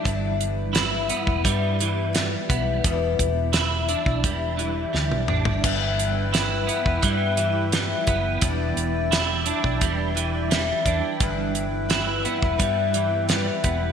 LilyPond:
<<
  \new Staff \with { instrumentName = "Accordion" } { \time 4/4 \key e \minor \tempo 4 = 86 << { r1 | r1 | <e' g''>1~ | <e' g''>1~ |
<e' g''>1 | } \\ { r1 | r1 | b'1 | d''1 |
b'1 | } >> }
  \new Staff \with { instrumentName = "Clean electric guitar" } { \clef bass \time 4/4 \key e \minor g,4 e'8 b8 g8 e8 g8 b8 | e,4 e'8 d'8 g8 e8 g8 d'8 | g,4 e'8 b8 g8 e8 g8 b8 | e,4 e'8 d'8 g8 e8 g8 d'8 |
g,4 e'8 b8 g8 e8 g8 b8 | }
  \new Staff \with { instrumentName = "Twelve-string acoustic guitar" } { \clef bass \time 4/4 \key e \minor <g, d e g b e'>4 <e g b e'>8 <e g b e'>8 <e g b e'>8 <e g b e'>8 <e g b e'>4 | <e, b, e g d' e'>4 <e d' e'>8 <e g d' e'>8 <e g d' e'>8 <e g d' e'>8 <e g d' e'>4 | <g, d e g b e'>4 <e g b e'>8 <e g b e'>8 <e g b e'>8 <e g b e'>8 <e g b e'>4 | <e, b, e g d' e'>4 <e g d' e'>8 <e g d' e'>8 <e g d' e'>8 <e g d' e'>8 <e g d' e'>4 |
<g, d e g b e'>4 <e g b e'>8 <e g b e'>8 <e g b e'>8 <e g b e'>8 <e g b e'>4 | }
  \new Staff \with { instrumentName = "Fingered electric bass" } { \clef bass \time 4/4 \key e \minor g,,4.~ g,,16 e,,16 g,4. b,,8 | e,,8 e,,4~ e,,16 b,,16 e,,4 d,16 b,,16 a,,16 g,,16 | g,,4.~ g,,16 e,,16 g,4. fis,,8 | e,,8 e,,4~ e,,16 b,,16 e,,4. e,16 r16 |
g,,4.~ g,,16 e,,16 g,4. e,,8 | }
  \new DrumStaff \with { instrumentName = "Drums" } \drummode { \time 4/4 <hh bd>8 hh8 <hh sn>8 hh16 bd16 <hh bd>8 hh8 <hh sn>8 <hh bd>8 | <hh bd>8 <hh bd>8 <hh sn>8 hh16 bd16 <hh bd>8 hh8 sn16 tommh16 toml16 tomfh16 | <cymc hh bd>8 hh8 <hh sn>8 hh16 bd16 <hh bd>8 hh8 <hh sn>8 <hh bd>8 | <hh bd>8 hh8 <hh sn>8 hh16 bd16 <hh bd>8 hh8 <hh sn>8 <hh bd>8 |
<hh bd>8 hh8 <hh sn>8 hh16 bd16 <hh bd>8 hh8 <hh sn>8 <hh bd>8 | }
>>